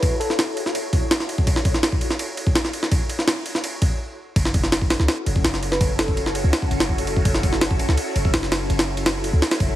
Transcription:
Already playing: string machine E4 F#4 A4 C#5, fm electric piano B4
0.03 kick, ride
0.20 fm electric piano A4, ride
0.30 snare
0.39 snare, ride
0.57 ride
0.66 snare
0.75 ride
0.93 kick, ride
1.11 snare, ride
1.20 snare
1.29 ride
1.38 kick
1.47 kick, ride
1.56 snare
1.65 kick, ride
1.74 snare
1.83 snare, ride
1.92 kick
2.01 ride
2.10 snare
2.19 ride
2.37 ride
2.47 kick
2.55 snare, ride
2.65 snare
2.73 ride
2.83 snare
2.92 kick, ride
3.10 ride
3.19 snare
3.28 snare, ride
3.46 ride
3.55 snare
3.64 ride
3.82 kick, ride
4.36 808-style bass F#1, string machine C#4 E4 F#4 A4, kick, ride
4.45 snare
4.54 kick, ride
4.63 snare
4.72 snare, ride
4.82 kick
4.90 snare, ride
5.00 808-style bass C#2, snare
5.08 snare, ride
5.26 808-style bass F#1, ride
5.36 kick
5.44 808-style bass F#1, snare, ride
5.54 snare
5.63 ride
5.72 fm electric piano B4, snare
5.81 808-style bass F#1, kick, ride
5.99 fm electric piano A4, snare, ride
6.08 kick
6.17 ride
6.26 snare
6.35 ride
6.44 808-style bass C#2
6.53 snare, ride
6.62 kick
6.71 808-style bass F#1, ride
6.80 snare, ride
6.89 kick
6.98 ride
7.07 ride
7.17 kick
7.25 808-style bass F#1, kick, ride
7.34 snare
7.43 kick, ride
7.53 snare
7.61 snare, ride
7.71 kick
7.79 ride
7.89 808-style bass C#2, snare
7.97 ride
8.16 808-style bass F#1, ride
8.25 kick
8.34 808-style bass F#1, snare, ride
8.43 snare
8.52 snare, ride
8.70 808-style bass F#1, ride
8.79 snare, ride
8.97 ride
9.06 snare, ride
9.24 ride
9.33 808-style bass C#2
9.42 snare, ride
9.51 snare, ride
9.60 808-style bass F#1, kick, ride

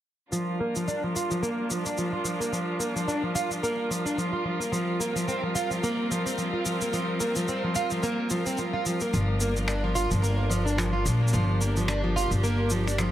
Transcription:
0.32 twelve-string acoustic guitar F3, string quartet G3 D4 F4 A#4, shaker
0.60 twelve-string acoustic guitar A#3
0.75 twelve-string acoustic guitar F3, shaker
0.88 twelve-string acoustic guitar D4, shaker
1.03 twelve-string acoustic guitar F3
1.16 twelve-string acoustic guitar F4, shaker
1.31 twelve-string acoustic guitar F3, shaker
1.43 twelve-string acoustic guitar A#3, shaker
1.70 twelve-string acoustic guitar F3, shaker
1.86 twelve-string acoustic guitar D4, shaker
1.97 twelve-string acoustic guitar F3, shaker
2.13 twelve-string acoustic guitar F4
2.24 twelve-string acoustic guitar F3, shaker
2.40 twelve-string acoustic guitar A#3, shaker
2.52 twelve-string acoustic guitar F3, shaker
2.79 twelve-string acoustic guitar A#3, shaker
2.96 twelve-string acoustic guitar F3, shaker
3.08 twelve-string acoustic guitar D4, shaker
3.23 twelve-string acoustic guitar F3
3.35 twelve-string acoustic guitar F4, shaker
3.51 twelve-string acoustic guitar F3, shaker
3.63 twelve-string acoustic guitar A#3, shaker
3.90 twelve-string acoustic guitar F3, shaker
4.06 twelve-string acoustic guitar D4, shaker
4.18 twelve-string acoustic guitar F3, shaker
4.33 twelve-string acoustic guitar F4
4.45 twelve-string acoustic guitar F3
4.60 twelve-string acoustic guitar A#3, shaker
4.72 twelve-string acoustic guitar F3, string quartet C4, shaker
5.00 twelve-string acoustic guitar A#3, shaker
5.16 twelve-string acoustic guitar F3, shaker
5.28 twelve-string acoustic guitar C4, shaker
5.43 twelve-string acoustic guitar F3
5.55 twelve-string acoustic guitar F4, shaker
5.71 twelve-string acoustic guitar F3, shaker
5.83 twelve-string acoustic guitar A#3, shaker
6.11 twelve-string acoustic guitar F3, shaker
6.26 twelve-string acoustic guitar C4, shaker
6.38 twelve-string acoustic guitar F3, shaker
6.53 twelve-string acoustic guitar F4
6.66 twelve-string acoustic guitar F3, shaker
6.81 twelve-string acoustic guitar A#3, shaker
6.93 twelve-string acoustic guitar F3, shaker
7.20 twelve-string acoustic guitar A#3, shaker
7.36 twelve-string acoustic guitar F3, shaker
7.48 twelve-string acoustic guitar C4, shaker
7.64 twelve-string acoustic guitar F3
7.75 twelve-string acoustic guitar F4, shaker
7.90 twelve-string acoustic guitar F3, shaker
8.03 twelve-string acoustic guitar A#3, shaker
8.30 twelve-string acoustic guitar F3, shaker
8.46 twelve-string acoustic guitar C4, shaker
8.57 twelve-string acoustic guitar F3, shaker
8.73 twelve-string acoustic guitar F4
8.86 twelve-string acoustic guitar F3, shaker
9.00 twelve-string acoustic guitar A#3, shaker
9.13 upright bass G1, twelve-string acoustic guitar F3, string quartet D4, shaker
9.40 twelve-string acoustic guitar A#3, shaker
9.56 twelve-string acoustic guitar F3, shaker
9.68 twelve-string acoustic guitar D4, finger snap, shaker
9.84 twelve-string acoustic guitar F3
9.95 twelve-string acoustic guitar F4, shaker
10.10 upright bass G1, twelve-string acoustic guitar F3, shaker
10.22 twelve-string acoustic guitar A#3, shaker
10.50 twelve-string acoustic guitar F3, shaker
10.66 twelve-string acoustic guitar D4, shaker
10.78 twelve-string acoustic guitar F3, finger snap, shaker
10.93 twelve-string acoustic guitar F4
11.05 upright bass A#1, twelve-string acoustic guitar F3, shaker
11.21 twelve-string acoustic guitar A#3
11.28 shaker
11.33 upright bass G1, twelve-string acoustic guitar F3, string quartet G4, shaker
11.61 twelve-string acoustic guitar A#3, shaker
11.76 twelve-string acoustic guitar F3, shaker
11.88 twelve-string acoustic guitar D4, finger snap, shaker
12.04 twelve-string acoustic guitar F3
12.16 twelve-string acoustic guitar F4, shaker
12.31 upright bass G1, twelve-string acoustic guitar F3, shaker
12.44 twelve-string acoustic guitar A#3, shaker
12.70 twelve-string acoustic guitar F3, shaker
12.87 twelve-string acoustic guitar D4, finger snap, shaker
12.98 twelve-string acoustic guitar F3, finger snap, shaker

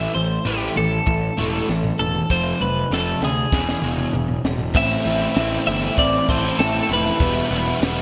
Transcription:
Already playing: overdriven electric guitar A2 E3 A3, clean electric guitar E5
0.15 picked electric bass A1, overdriven electric guitar A2 E3, clean electric guitar C5
0.45 picked electric bass A1, overdriven electric guitar A2 E3 A3, clean electric guitar G4, floor tom
0.76 picked electric bass A1, overdriven electric guitar A2 E3, clean electric guitar A4, mid tom
1.06 picked electric bass A1, overdriven electric guitar A2 E3, kick, floor tom
1.37 picked electric bass E1, overdriven electric guitar A2 E3 A3, floor tom
1.69 picked electric bass A1, overdriven electric guitar A2 E3, snare
1.84 floor tom
1.99 picked electric bass E1, overdriven electric guitar A2 E3, clean electric guitar A4
2.15 mid tom
2.30 picked electric bass F1, overdriven electric guitar F2 C3 F3, clean electric guitar C5, kick
2.61 picked electric bass F1, overdriven electric guitar F2 C3, clean electric guitar B4, high tom
2.91 picked electric bass F1, overdriven electric guitar F2 C3 F3, clean electric guitar A4, snare
3.22 picked electric bass D2, overdriven electric guitar F2 C3, clean electric guitar G#4, snare
3.52 picked electric bass E1, overdriven electric guitar E2 B2 E3, kick, snare
3.69 snare
3.82 picked electric bass E1, overdriven electric guitar E2 B2 E3, mid tom
3.98 mid tom
4.13 picked electric bass E1, overdriven electric guitar E2 B2, floor tom
4.28 floor tom
4.44 picked electric bass E1, overdriven electric guitar E2 B2, snare
4.59 floor tom
4.74 picked electric bass A1, overdriven electric guitar A2 E3 A3 C4, clean electric guitar E5, kick, crash
4.78 overdriven electric guitar E4
4.89 closed hi-hat
5.05 picked electric bass A1, overdriven electric guitar E3 A3 C4, closed hi-hat
5.09 overdriven electric guitar E4
5.20 overdriven electric guitar A3 C4 E4, closed hi-hat
5.35 picked electric bass A1, overdriven electric guitar A2 E3 A3 C4, snare, closed hi-hat
5.40 overdriven electric guitar E4
5.67 picked electric bass G1, overdriven electric guitar E3 A3 C4 E4, clean electric guitar E5, closed hi-hat
5.84 overdriven electric guitar A3 C4 E4
5.98 picked electric bass A1, clean electric guitar C4 D5, kick, closed hi-hat
6.14 closed hi-hat
6.29 picked electric bass A1, overdriven electric guitar E3 A3 C4, clean electric guitar A4 C5, kick, closed hi-hat
6.33 overdriven electric guitar E4
6.44 overdriven electric guitar C4 E4, closed hi-hat
6.49 overdriven electric guitar A3
6.59 picked electric bass A1, overdriven electric guitar A2 E3 A3 C4, clean electric guitar A4, snare, closed hi-hat
6.63 overdriven electric guitar E4
6.74 overdriven electric guitar A3 C4 E4, closed hi-hat
6.83 clean electric guitar A4
6.89 picked electric bass F1, overdriven electric guitar E3 A3 C4, closed hi-hat
6.93 overdriven electric guitar E4, clean electric guitar B4
7.05 overdriven electric guitar A3 C4 E4, snare, closed hi-hat
7.20 picked electric bass E1, overdriven electric guitar E2 B2 E3 G3 B3 E4, kick, closed hi-hat
7.37 closed hi-hat
7.51 picked electric bass E1, overdriven electric guitar E3 G3 B3 E4, closed hi-hat
7.67 overdriven electric guitar E3 G3 B3 E4, closed hi-hat
7.81 picked electric bass E1, overdriven electric guitar E2 B2 E3 G3, clean electric guitar B3, snare, closed hi-hat
7.85 overdriven electric guitar B3 E4
7.97 closed hi-hat

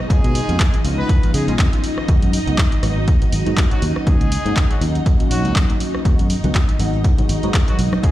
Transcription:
Already playing: string machine D#4 D#5, impact
0.10 fingered electric bass C#2, analog polysynth F3 G#3 B3 C#4 F4, horn section G#3 G#4, kick, closed hi-hat
0.24 fingered electric bass B2, closed hi-hat
0.35 open hi-hat
0.49 fingered electric bass F2, analog polysynth F3 G#3 B3 C#4 F4, closed hi-hat
0.60 kick, clap, closed hi-hat
0.74 closed hi-hat
0.84 fingered electric bass C#2, analog polysynth F3 G#3 B3 C#4 F4, open hi-hat
0.99 horn section B3 B4
1.09 kick, closed hi-hat
1.23 analog polysynth F3 G#3 B3 C#4 F4, closed hi-hat
1.34 fingered electric bass C#3, horn section G#3 G#4, open hi-hat
1.48 fingered electric bass B1, analog polysynth F3 G#3 B3 C#4 F4, horn section G#3 G#4, closed hi-hat
1.59 fingered electric bass F2, kick, clap, closed hi-hat
1.73 analog polysynth F3 G#3 B3 C#4 F4, closed hi-hat
1.84 open hi-hat
1.98 cross-stick
2.08 fingered electric bass G#1, analog polysynth F#3 G#3 B3 D#4 F#4, kick, closed hi-hat
2.22 fingered electric bass F#2, closed hi-hat
2.33 open hi-hat
2.47 fingered electric bass C#2, analog polysynth F#3 G#3 B3 D#4 F#4, closed hi-hat
2.58 kick, clap, closed hi-hat
2.72 closed hi-hat
2.82 fingered electric bass G#1, analog polysynth F#3 G#3 B3 D#4 F#4, cross-stick, open hi-hat
3.08 kick, closed hi-hat
3.21 analog polysynth F#3 G#3 B3 D#4 F#4, closed hi-hat
3.32 fingered electric bass G#1, open hi-hat
3.46 fingered electric bass G#2, analog polysynth F#3 G#3 B3 D#4 F#4, closed hi-hat
3.57 kick, clap, closed hi-hat
3.71 analog polysynth F#3 A#3 C#4 D#4 F#4, horn section F#3 F#4, closed hi-hat
3.82 fingered electric bass D#2, open hi-hat
3.96 cross-stick
4.07 fingered electric bass D#2, analog polysynth F#3 A#3 C#4 D#4 F#4, horn section G#3 G#4, kick, closed hi-hat
4.21 fingered electric bass C#2, closed hi-hat
4.32 open hi-hat
4.45 fingered electric bass G#2, analog polysynth F#3 A#3 C#4 D#4 F#4, closed hi-hat
4.56 kick, clap, closed hi-hat
4.70 horn section F#3 F#4, closed hi-hat
4.81 fingered electric bass D#2, analog polysynth F#3 A#3 C#4 D#4 F#4, open hi-hat
4.95 closed hi-hat
5.06 kick, closed hi-hat
5.19 analog polysynth F#3 A#3 C#4 D#4 F#4, closed hi-hat
5.31 fingered electric bass A#1, horn section F#3 F#4, open hi-hat
5.45 fingered electric bass C#2, analog polysynth F#3 A#3 C#4 D#4 F#4, closed hi-hat
5.56 fingered electric bass F#2, kick, clap, closed hi-hat
5.69 analog polysynth F#3 A#3 C#4 D#4 F#4, closed hi-hat
5.80 open hi-hat
5.94 cross-stick
6.05 fingered electric bass G#1, analog polysynth F#3 G#3 B3 D#4 F#4, string machine D#4 D#5, kick, closed hi-hat, maracas
6.19 fingered electric bass F#2, closed hi-hat, maracas
6.30 open hi-hat, maracas
6.44 fingered electric bass C#2, analog polysynth F#3 G#3 B3 D#4 F#4, closed hi-hat, high conga, maracas
6.55 kick, clap, closed hi-hat
6.68 closed hi-hat, maracas
6.79 fingered electric bass G#1, analog polysynth F#3 G#3 B3 D#4 F#4, open hi-hat, high conga, maracas
6.93 maracas
7.04 kick, closed hi-hat, maracas
7.18 analog polysynth F#3 G#3 B3 D#4 F#4, closed hi-hat, high conga, low conga, maracas
7.29 fingered electric bass G#1, open hi-hat, maracas
7.43 fingered electric bass G#2, analog polysynth F#3 G#3 B3 D#4 F#4, closed hi-hat, maracas
7.54 kick, clap, closed hi-hat, high conga, maracas
7.67 analog polysynth F#3 G#3 B3 D#4 F#4, horn section F#3 F#4, closed hi-hat, maracas
7.79 fingered electric bass B1, open hi-hat, maracas
7.92 cross-stick, high conga, maracas
8.03 fingered electric bass C#2, analog polysynth F3 G#3 B3 C#4 F4, horn section G#3 G#4, kick, closed hi-hat, maracas

